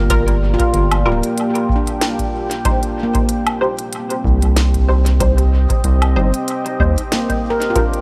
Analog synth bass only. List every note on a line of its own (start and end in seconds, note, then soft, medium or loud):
0.00 0.56 G1 medium
0.74 1.07 G1 loud
1.06 1.21 D1 medium
4.25 4.40 C2 loud
4.43 5.67 C2 medium
5.84 6.18 C2 loud
6.16 6.32 G1 medium
6.80 6.96 D#2 loud